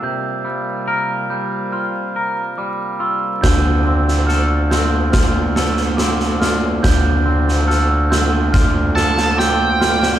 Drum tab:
SD |----------------|o--oo-o-o-ooooo-|o--oo-o-o-ooo-oo|
BD |----------------|o-------o-------|o-------o-------|